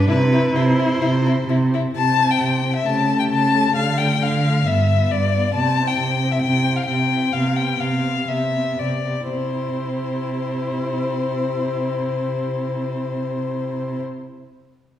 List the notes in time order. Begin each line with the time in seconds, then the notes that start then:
Already playing: D4
0.08 C3 E4 B4
0.32 E4
0.55 C3 E4 C5
0.79 E4
1.02 C3 E4
1.26 E4
1.48 C3 E4
1.74 E4
1.96 C3 A5
2.19 C4 E4
2.31 G5
2.41 C3
2.65 C4 E4
2.76 E5
2.86 C#3 A3 G4 A5
3.09 A3 G4
3.20 G5
3.30 C#3 A5
3.54 A3 G4
3.76 D3 F5
3.98 A3 F4 G5
4.22 D3 F5
4.46 A3 F4
4.66 G2 B3 F4 E5
4.91 B3 F4
5.11 G2 D5
5.34 B3 F4
5.55 C3 A5
5.77 C4 E4
5.87 G5
5.98 C3
6.22 C4 E4
6.32 E5
6.42 C3 G5
6.66 C4 E4
6.76 F5
6.86 C3 G5
7.12 C4 E4
7.33 C3 B3 G4 F5
7.56 B3 G4 G5
7.80 C3 F5
8.04 B3 G4
8.28 C3 E5
8.53 B3 G4
8.79 C3 D5
9.04 B3 G4
9.29 C3 E4 G4 C5